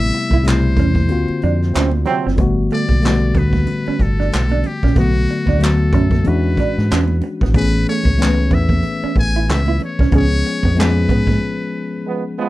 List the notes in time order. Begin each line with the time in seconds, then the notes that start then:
Already playing: C3 G3 A3 B3 E4 E5
0.12 muted clean electric guitar stroke, closed hi-hat
0.30 C2 E4, kick, high conga
0.43 B2 C3 G3 A3, closed hi-hat
0.48 E4 C5, snare, clap
0.62 muted conga
0.77 E2 C#4, kick, closed hi-hat, low conga
0.95 kick, high conga
1.08 D2 D3 A#3 C4 F#4, closed hi-hat, muted conga, low conga
1.12 F4
1.28 muted fingered electric bass stroke, muted conga
1.42 F2 D4, closed hi-hat
1.62 snare
1.74 D2 C3 F#3 C4 C#4, snare, clap, closed hi-hat, muted conga
1.91 muted conga, high conga
2.05 C3 F#3 C4, muted clean electric guitar stroke, closed hi-hat, low conga
2.27 F#1 C4, snare
2.36 G1 D3 G3 A3 B3, kick, closed hi-hat, muted conga
2.41 F#4
2.70 A3 D5, closed hi-hat
2.88 B1, kick, high conga
3.01 D3 G3 A3 B3, closed hi-hat, muted conga
3.05 F#4, snare, clap
3.20 muted conga
3.35 D2 B3 B4, kick, closed hi-hat, low conga
3.53 kick, snare, high conga
3.67 closed hi-hat, muted conga, low conga
3.87 C#4, muted fingered electric bass stroke, muted conga
3.99 G1 A4, muted clean electric guitar stroke, kick, closed hi-hat
4.20 D4, snare
4.32 B1, snare, clap, closed hi-hat, muted conga
4.50 D4, muted conga, high conga
4.63 G4, muted clean electric guitar stroke, closed hi-hat, low conga
4.83 A#1 C#4, kick, snare
4.94 B1 D3 F#3 A3 B3, kick, closed hi-hat, muted conga
4.99 F#4
5.15 muted conga
5.28 muted clean electric guitar stroke, closed hi-hat
5.46 D2 D4, kick, high conga
5.58 D3 F#3 A3 B3, closed hi-hat, muted conga
5.63 F#4 A4, snare, clap
5.78 muted conga
5.93 F#2 C#4, kick, closed hi-hat, low conga
6.11 kick, snare, high conga
6.23 E3 G#3 C#4 D4, closed hi-hat, muted conga, low conga
6.27 E2 F#4 B4
6.44 muted conga
6.57 D4, muted fingered electric bass stroke, kick, closed hi-hat
6.78 G#2, snare
6.90 E2 C#4, snare, clap, closed hi-hat
7.08 high conga
7.21 muted clean electric guitar stroke, closed hi-hat, low conga
7.41 G#1 B3, kick, snare
7.53 A1 E3 A3 B3 C#4 B4, kick, closed hi-hat, muted conga
7.57 G#4
7.73 muted conga
7.87 A3 C#5, closed hi-hat
8.04 C#2, kick, high conga
8.17 E3 A3 B3 C#4, closed hi-hat, muted conga
8.22 B4, snare, clap
8.36 muted conga
8.51 E2 B3 E5, kick, closed hi-hat, low conga
8.69 kick, high conga
8.83 closed hi-hat, muted conga, low conga
9.03 C#4, muted fingered electric bass stroke, muted conga
9.16 A1 G#5, muted clean electric guitar stroke, kick, closed hi-hat
9.36 E4
9.48 C#2 E5, snare, clap, closed hi-hat
9.66 E4, muted conga, high conga
9.79 muted clean electric guitar stroke, closed hi-hat, low conga
9.84 C#5
9.99 C2 C#4, kick, snare
10.11 C#2 F3 G#3 B3 C#4, kick, closed hi-hat
10.15 G#4 C#5
10.32 muted conga
10.45 muted clean electric guitar stroke, closed hi-hat
10.63 F2 B3, kick, high conga
10.75 F3 G#3 B3 C#4, closed hi-hat
10.80 G#4 B4, snare, clap
10.95 muted conga
11.09 G#2 B3, kick, closed hi-hat, low conga
11.27 kick, snare, high conga
12.06 F3 G#3 B3
12.38 F3 G#3 B3